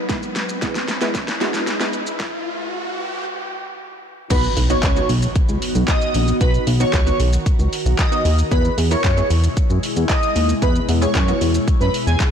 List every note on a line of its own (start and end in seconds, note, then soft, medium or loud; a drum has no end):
0.00 2.16 B4 medium
0.00 riser medium
0.09 0.37 G#3 medium
0.09 2.18 G#3 medium
0.09 0.37 B3 medium
0.09 2.18 E4 medium
0.09 0.38 E4 medium
0.09 0.38 B4 loud
0.09 kick loud
0.09 snare loud
0.09 closed hi-hat medium
0.09 shaker medium
0.23 shaker soft
0.36 snare loud
0.36 closed hi-hat medium
0.36 shaker medium
0.49 shaker medium
0.62 0.83 G#3 medium
0.62 0.83 B3 medium
0.62 0.83 E4 medium
0.62 0.83 B4 loud
0.62 kick loud
0.62 snare loud
0.62 closed hi-hat medium
0.62 shaker medium
0.75 snare loud
0.75 shaker medium
0.88 snare loud
0.88 closed hi-hat medium
0.88 shaker medium
1.01 1.22 G#3 medium
1.01 1.22 B3 medium
1.01 1.23 E4 medium
1.01 1.23 B4 loud
1.01 snare loud
1.01 shaker medium
1.15 kick loud
1.15 snare loud
1.15 closed hi-hat medium
1.15 shaker medium
1.28 snare loud
1.28 shaker medium
1.41 1.62 G#3 medium
1.41 1.62 B3 medium
1.41 1.62 E4 medium
1.41 1.62 F#4 loud
1.41 snare loud
1.41 closed hi-hat medium
1.41 shaker medium
1.54 snare loud
1.54 shaker medium
1.67 snare loud
1.67 closed hi-hat medium
1.67 shaker medium
1.80 2.01 G#3 medium
1.80 2.02 B3 medium
1.80 2.02 E4 medium
1.80 2.02 B4 loud
1.80 snare loud
1.80 shaker medium
1.93 closed hi-hat medium
1.93 shaker medium
2.07 shaker medium
2.20 kick loud
2.20 snare loud
4.30 4.48 B1 loud
4.30 8.47 D#3 medium
4.30 6.39 B3 medium
4.30 4.51 B3 medium
4.30 4.51 D#4 medium
4.30 8.47 F#4 medium
4.30 4.52 F#4 medium
4.30 4.40 B4 loud
4.30 kick loud
4.30 closed hi-hat medium
4.30 crash loud
4.30 impact medium
4.30 shaker medium
4.44 shaker medium
4.57 4.75 B1 loud
4.57 open hi-hat medium
4.57 shaker medium
4.70 4.84 B3 medium
4.70 4.84 D#4 medium
4.70 4.84 F#4 medium
4.70 5.07 C#5 medium
4.70 shaker medium
4.83 5.01 C#2 loud
4.83 kick loud
4.83 snare medium
4.83 clap loud
4.83 closed hi-hat medium
4.83 shaker medium
4.96 5.52 B3 medium
4.96 5.52 D#4 medium
4.96 5.52 F#4 medium
4.96 shaker medium
5.09 5.27 B1 medium
5.09 open hi-hat medium
5.09 shaker medium
5.22 shaker medium
5.36 kick loud
5.36 closed hi-hat medium
5.36 shaker medium
5.49 5.58 C#2 medium
5.49 shaker medium
5.62 open hi-hat medium
5.62 shaker medium
5.75 5.84 B1 loud
5.75 shaker medium
5.88 6.25 D#5 medium
5.88 kick loud
5.88 snare loud
5.88 clap loud
5.88 closed hi-hat medium
5.88 shaker medium
6.01 shaker medium
6.14 6.33 A#1 loud
6.14 open hi-hat medium
6.14 shaker medium
6.28 shaker medium
6.41 6.59 B1 loud
6.41 6.62 B3 medium
6.41 6.62 D#4 medium
6.41 6.62 F#4 medium
6.41 8.49 A#4 medium
6.41 6.51 B4 loud
6.41 kick loud
6.41 closed hi-hat medium
6.41 shaker medium
6.54 shaker soft
6.67 6.85 B1 loud
6.67 open hi-hat medium
6.67 shaker medium
6.80 6.94 B3 medium
6.80 6.94 D#4 medium
6.80 6.95 F#4 medium
6.80 7.17 C#5 medium
6.80 shaker medium
6.93 7.12 C#2 loud
6.93 kick loud
6.93 snare loud
6.93 clap loud
6.93 closed hi-hat medium
6.93 shaker medium
7.07 7.63 B3 medium
7.07 7.63 D#4 medium
7.07 7.63 F#4 medium
7.07 shaker medium
7.20 7.38 B1 medium
7.20 open hi-hat medium
7.20 shaker medium
7.33 shaker medium
7.46 kick loud
7.46 closed hi-hat medium
7.46 shaker medium
7.59 7.68 C#2 loud
7.59 shaker medium
7.73 open hi-hat medium
7.73 shaker medium
7.86 7.95 B1 loud
7.86 shaker medium
7.99 8.36 D#5 medium
7.99 kick loud
7.99 snare loud
7.99 clap loud
7.99 closed hi-hat medium
7.99 shaker medium
8.12 8.33 B3 medium
8.12 8.33 D#4 medium
8.12 8.33 F#4 medium
8.12 shaker medium
8.25 8.43 D#2 medium
8.25 open hi-hat medium
8.25 shaker medium
8.38 shaker medium
8.51 8.70 E2 loud
8.51 12.31 B2 medium
8.51 12.31 G#3 medium
8.51 8.73 B3 medium
8.51 12.31 E4 medium
8.51 8.73 E4 medium
8.51 8.73 G#4 medium
8.51 8.61 B4 loud
8.51 kick loud
8.51 closed hi-hat medium
8.51 shaker medium
8.65 shaker medium
8.78 8.96 E2 loud
8.78 open hi-hat medium
8.78 shaker medium
8.91 9.05 B3 medium
8.91 9.05 E4 medium
8.91 9.05 A#4 medium
8.91 9.28 C#5 medium
8.91 shaker medium
9.04 9.22 F#2 loud
9.04 kick loud
9.04 snare medium
9.04 clap loud
9.04 closed hi-hat medium
9.04 shaker medium
9.17 9.73 B3 medium
9.17 9.73 E4 medium
9.17 9.73 G#4 medium
9.17 shaker medium
9.30 9.48 E2 medium
9.30 open hi-hat medium
9.30 shaker medium
9.44 shaker medium
9.57 kick loud
9.57 closed hi-hat medium
9.57 shaker medium
9.70 9.79 F#2 medium
9.70 shaker medium
9.83 open hi-hat medium
9.83 shaker medium
9.96 10.05 E2 loud
9.96 shaker medium
10.09 10.47 D#5 medium
10.09 kick loud
10.09 snare loud
10.09 clap loud
10.09 closed hi-hat medium
10.09 shaker medium
10.23 shaker medium
10.36 10.54 D#2 medium
10.36 open hi-hat medium
10.36 shaker medium
10.49 shaker medium
10.62 10.80 E2 loud
10.62 10.83 B3 medium
10.62 10.83 E4 medium
10.62 10.83 G#4 medium
10.62 10.72 B4 loud
10.62 kick loud
10.62 closed hi-hat medium
10.62 shaker medium
10.76 shaker medium
10.89 11.06 E2 loud
10.89 open hi-hat medium
10.89 shaker medium
11.01 11.15 B3 medium
11.01 11.16 E4 medium
11.01 11.16 G#4 medium
11.01 11.39 C#5 medium
11.01 shaker medium
11.15 11.33 F#2 loud
11.15 kick loud
11.15 snare loud
11.15 clap loud
11.15 closed hi-hat medium
11.15 shaker medium
11.28 11.84 B3 medium
11.28 11.84 E4 medium
11.28 11.84 F#4 medium
11.28 shaker medium
11.41 11.59 E2 medium
11.41 open hi-hat medium
11.41 shaker medium
11.54 shaker medium
11.68 kick loud
11.68 closed hi-hat medium
11.68 shaker medium
11.81 11.90 F#2 medium
11.81 11.90 B4 medium
11.81 shaker medium
11.94 open hi-hat medium
11.94 shaker medium
12.07 12.16 E2 medium
12.07 12.16 G#4 medium
12.07 shaker medium
12.20 kick loud
12.20 snare medium
12.20 clap loud
12.20 closed hi-hat medium
12.20 shaker medium